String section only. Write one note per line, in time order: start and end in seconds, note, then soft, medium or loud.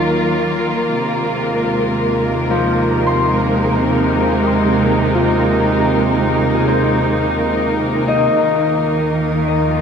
0.00 0.90 D#3 medium
0.00 0.90 F#3 medium
0.00 9.81 A#3 medium
0.00 3.26 F4 medium
0.00 9.81 A#4 medium
0.91 8.35 C3 medium
1.22 8.35 G#3 medium
2.90 9.81 D#4 medium
8.35 9.81 D#3 medium
9.39 9.81 F3 medium
9.69 9.81 F4 medium